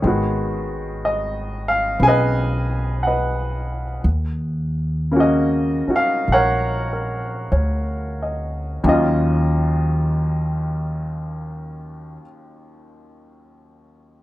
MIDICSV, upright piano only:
0, 0, Header, 1, 2, 480
1, 0, Start_track
1, 0, Key_signature, -6, "minor"
1, 0, Tempo, 980392
1, 18, Time_signature, 4, 2, 24, 8
1, 978, Tempo, 1022147
1, 1938, Tempo, 1086957
1, 2418, Tempo, 1151631
1, 2898, Tempo, 1234568
1, 3378, Tempo, 1324503
1, 3858, Tempo, 1360544
1, 5759, End_track
2, 0, Start_track
2, 0, Title_t, "Upright piano"
2, 0, Program_c, 0, 0
2, 0, Control_c, 0, 64, 127
2, 0, Note_on_c, 0, 73, 34
2, 11, Note_on_c, 0, 51, 49
2, 18, Note_on_c, 0, 56, 45
2, 24, Control_c, 0, 64, 0
2, 28, Note_on_c, 0, 59, 40
2, 35, Note_on_c, 0, 66, 50
2, 98, Control_c, 0, 64, 127
2, 122, Note_off_c, 0, 73, 0
2, 514, Note_on_c, 0, 75, 65
2, 804, Note_off_c, 0, 75, 0
2, 824, Note_on_c, 0, 77, 77
2, 969, Note_off_c, 0, 59, 0
2, 972, Note_off_c, 0, 77, 0
2, 976, Note_on_c, 0, 59, 31
2, 986, Note_on_c, 0, 61, 32
2, 990, Note_on_c, 0, 68, 44
2, 994, Note_on_c, 0, 80, 94
2, 1014, Note_on_c, 0, 71, 68
2, 1019, Note_on_c, 0, 75, 69
2, 1440, Note_off_c, 0, 80, 0
2, 1463, Note_on_c, 0, 78, 62
2, 1475, Note_off_c, 0, 75, 0
2, 1476, Note_off_c, 0, 71, 0
2, 1482, Note_on_c, 0, 75, 45
2, 1483, Note_on_c, 0, 71, 45
2, 1841, Note_off_c, 0, 78, 0
2, 1934, Note_off_c, 0, 51, 0
2, 1934, Note_off_c, 0, 75, 0
2, 1935, Note_off_c, 0, 71, 0
2, 1937, Note_off_c, 0, 59, 0
2, 1938, Note_off_c, 0, 56, 0
2, 1942, Note_off_c, 0, 61, 0
2, 1943, Note_off_c, 0, 68, 0
2, 1943, Control_c, 0, 64, 0
2, 1945, Note_off_c, 0, 66, 0
2, 2019, Control_c, 0, 64, 127
2, 2412, Note_on_c, 0, 49, 45
2, 2416, Note_on_c, 0, 58, 50
2, 2424, Note_on_c, 0, 61, 46
2, 2433, Note_on_c, 0, 66, 56
2, 2449, Note_on_c, 0, 75, 62
2, 2722, Note_off_c, 0, 61, 0
2, 2729, Note_on_c, 0, 61, 37
2, 2730, Note_off_c, 0, 75, 0
2, 2735, Note_off_c, 0, 66, 0
2, 2736, Note_on_c, 0, 63, 37
2, 2741, Note_on_c, 0, 66, 43
2, 2763, Note_on_c, 0, 77, 81
2, 2902, Note_off_c, 0, 77, 0
2, 2915, Note_on_c, 0, 78, 84
2, 2919, Note_on_c, 0, 73, 63
2, 2920, Note_on_c, 0, 70, 61
2, 3144, Note_off_c, 0, 70, 0
2, 3150, Note_on_c, 0, 70, 36
2, 3371, Note_off_c, 0, 78, 0
2, 3373, Note_off_c, 0, 73, 0
2, 3379, Note_on_c, 0, 73, 38
2, 3490, Note_off_c, 0, 70, 0
2, 3635, Note_on_c, 0, 75, 30
2, 3761, Note_off_c, 0, 73, 0
2, 3856, Note_off_c, 0, 49, 0
2, 3857, Note_off_c, 0, 58, 0
2, 3857, Note_off_c, 0, 61, 0
2, 3857, Note_on_c, 0, 39, 54
2, 3857, Note_on_c, 0, 51, 46
2, 3860, Note_off_c, 0, 63, 0
2, 3862, Note_off_c, 0, 66, 0
2, 3862, Control_c, 0, 64, 0
2, 3862, Note_on_c, 0, 54, 47
2, 3864, Note_on_c, 0, 61, 49
2, 3868, Note_on_c, 0, 65, 55
2, 3870, Note_off_c, 0, 75, 0
2, 3875, Note_on_c, 0, 75, 66
2, 3917, Control_c, 0, 64, 127
2, 5043, Note_off_c, 0, 39, 0
2, 5043, Note_off_c, 0, 51, 0
2, 5048, Note_off_c, 0, 54, 0
2, 5048, Note_off_c, 0, 75, 0
2, 5050, Note_off_c, 0, 61, 0
2, 5054, Note_off_c, 0, 65, 0
2, 5759, End_track
0, 0, End_of_file